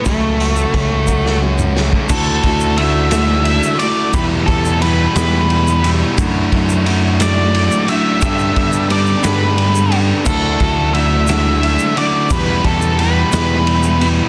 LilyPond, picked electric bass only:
\new Staff \with { instrumentName = "Picked electric bass" } { \clef bass \time 6/8 \key d \major \tempo 4. = 59 cis,4 cis,2 | d,8 d,2 r8 | e,8 e,4 e,4. | fis,8 fis,2 r8 |
g,8 g,4 g,4. | d,8 d,2 r8 | e,8 e,4 e,4. | }